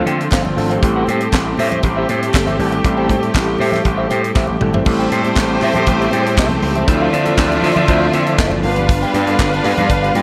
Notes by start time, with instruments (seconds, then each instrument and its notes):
Already playing: string section D3 A3 C4 F4, tine electric piano E3 F3 A3 C4 D4 A4
0.06 slap bass D3, clean electric guitar A4 C5 G5, closed hi-hat, high conga
0.20 muted clean electric guitar stroke, closed hi-hat
0.31 slap bass G1, clean electric guitar A4 C5 F5, tine electric piano D5, kick, clap, high conga
0.34 snare, clap
0.45 muted clean electric guitar stroke, high conga, low conga
0.56 slap bass G#1, tine electric piano F3 A3 C4 D4 A4 F5, muted clean electric guitar stroke, open hi-hat
0.70 clean electric guitar A4 C5 F5, closed hi-hat
0.82 slap bass A1, tine electric piano G3 A3 C4 E4 A4, string section A3 G4, kick, closed hi-hat
0.96 clean electric guitar G4 C5 G5
1.07 slap bass A2, clean electric guitar G4 C5 G5, closed hi-hat, high conga
1.20 muted clean electric guitar stroke, closed hi-hat
1.33 slap bass A1, muted clean electric guitar stroke, kick, clap
1.34 snare, clap
1.47 muted clean electric guitar stroke
1.57 slap bass A2, clean electric guitar G4 C5 E5, open hi-hat, high conga
1.71 clean electric guitar G4 C5, closed hi-hat, low conga
1.83 slap bass A1, kick, closed hi-hat
1.97 clean electric guitar G4 C5 E5
2.09 slap bass A2, clean electric guitar G4 C5 G5, closed hi-hat, high conga
2.22 muted clean electric guitar stroke, closed hi-hat
2.34 slap bass G1, muted clean electric guitar stroke, kick, clap, muted conga, high conga
2.36 snare, clap
2.47 clean electric guitar G4 C5 E5, closed hi-hat, high conga, low conga
2.58 slap bass G#1, tine electric piano G3 A3 C4 E4 A4, muted clean electric guitar stroke, open hi-hat
2.72 muted clean electric guitar stroke, closed hi-hat
2.84 slap bass A1, tine electric piano G3 A3 C4 E4 A4, muted clean electric guitar stroke, kick, closed hi-hat, muted conga
2.97 clean electric guitar G4 C5 G5, muted conga
3.09 slap bass A2, clean electric guitar G4 C5 G5, kick, closed hi-hat, high conga
3.23 muted clean electric guitar stroke, closed hi-hat, high conga
3.34 slap bass A1, muted clean electric guitar stroke, kick, clap, muted conga
3.36 snare, clap
3.47 muted clean electric guitar stroke, muted conga
3.58 slap bass A2, clean electric guitar G4 C5 E5, open hi-hat, high conga
3.72 clean electric guitar G4 C5 E5, snare, closed hi-hat, low conga
3.84 slap bass A1, muted clean electric guitar stroke, kick, closed hi-hat
3.97 clean electric guitar G4 C5 E5, muted conga
4.09 slap bass A2, clean electric guitar G4 C5 G5, closed hi-hat, high conga
4.24 muted clean electric guitar stroke, closed hi-hat
4.35 slap bass A1, clean electric guitar G4 C5 E5, kick, snare, clap, high conga
4.47 muted clean electric guitar stroke, muted conga, high conga, low conga
4.60 slap bass G#1, tine electric piano G3 A3 C4 E4 A4, muted clean electric guitar stroke, mid tom
4.74 clean electric guitar G4 C5 E5, floor tom, low conga
4.85 slap bass A1, tine electric piano G3 A3 C4 E4 A4, string section A3 C4 G4, violin section A3 G4 C5, kick, crash, muted conga
4.98 clean electric guitar G4 C5 G5, closed hi-hat, muted conga
5.10 slap bass A2, clean electric guitar G4 C5 G5, closed hi-hat, high conga
5.24 tine electric piano G3 A3 B3 E4 G4, muted clean electric guitar stroke, closed hi-hat, high conga
5.30 tine electric piano C4
5.35 slap bass A1, muted clean electric guitar stroke, kick, clap, muted conga
5.38 snare, clap
5.49 muted clean electric guitar stroke, muted conga
5.60 slap bass A2, clean electric guitar G4 C5 E5, clap, open hi-hat, high conga
5.74 slap bass A2, clean electric guitar C5 E5, closed hi-hat, low conga
5.78 clean electric guitar G4
5.86 slap bass A1, kick, closed hi-hat
6.00 clean electric guitar G4 C5 E5, closed hi-hat, muted conga
6.11 slap bass A2, tine electric piano G3 A3 C4 E4 G#4, clean electric guitar G4 C5 G5, closed hi-hat, high conga
6.19 tine electric piano A4
6.25 muted clean electric guitar stroke, closed hi-hat
6.37 slap bass C2, clean electric guitar G4 C5 E5, kick, clap, high conga
6.39 snare, clap
6.49 muted clean electric guitar stroke, closed hi-hat, muted conga, high conga, low conga
6.62 slap bass C#2, muted clean electric guitar stroke, open hi-hat
6.75 clean electric guitar G4 C5 E5, closed hi-hat, low conga
6.87 slap bass D2, string section D3 F3 E5, tine electric piano F3 C4 D4 E4 A4, violin section A3 F4 D5, kick, closed hi-hat, muted conga
7.01 clean electric guitar F4 C5 F5, muted conga
7.13 slap bass D3, clean electric guitar F4 C5 F5, closed hi-hat, high conga
7.25 tine electric piano E3 C4 D4 E4 A4, muted clean electric guitar stroke, closed hi-hat, high conga
7.32 tine electric piano F3
7.38 slap bass D2, muted clean electric guitar stroke, kick, snare, clap
7.52 muted clean electric guitar stroke, closed hi-hat
7.62 slap bass D3, clean electric guitar F4 C5 E5, open hi-hat, high conga
7.76 slap bass D3, clean electric guitar F4 E5, closed hi-hat, low conga
7.88 slap bass D2, clean electric guitar F4 C5 E5, kick, closed hi-hat, muted conga
8.02 muted clean electric guitar stroke, muted conga
8.13 slap bass D3, tine electric piano F3 C4 D4 E4 A4, muted clean electric guitar stroke, closed hi-hat, high conga
8.26 clean electric guitar F4 C5 E5, closed hi-hat
8.38 slap bass F#1, clean electric guitar F4 C5 E5, kick, snare, clap, muted conga, high conga
8.51 muted clean electric guitar stroke, muted conga, high conga, low conga
8.63 slap bass G1, tine electric piano G3 B3 D4 F4 A#4, string section G3 D4 F4 B4, violin section D4 B4 F5, muted clean electric guitar stroke, open hi-hat
8.71 tine electric piano B4
8.76 clean electric guitar G4 B4 F5, closed hi-hat, low conga
8.89 muted clean electric guitar stroke, kick, closed hi-hat, muted conga
9.02 clean electric guitar G4 B4 G5, closed hi-hat, muted conga
9.13 slap bass G2, clean electric guitar G4 B4 G5, closed hi-hat, high conga
9.27 tine electric piano G3 B3 D4 F4 A4, muted clean electric guitar stroke, closed hi-hat, high conga
9.35 tine electric piano B4, muted conga
9.39 slap bass G1, muted clean electric guitar stroke, kick, snare, clap
9.52 muted clean electric guitar stroke, closed hi-hat
9.64 slap bass G2, clean electric guitar G4 B4 F5, clap, open hi-hat, high conga
9.77 slap bass G2, clean electric guitar G4 B4 F5, closed hi-hat, low conga
9.89 slap bass G1, muted clean electric guitar stroke, kick, closed hi-hat
10.03 clean electric guitar G4 B4 F5, closed hi-hat
10.15 slap bass G2, tine electric piano G3 B3 D4 F4 B4, clean electric guitar G4 B4 G5, closed hi-hat, high conga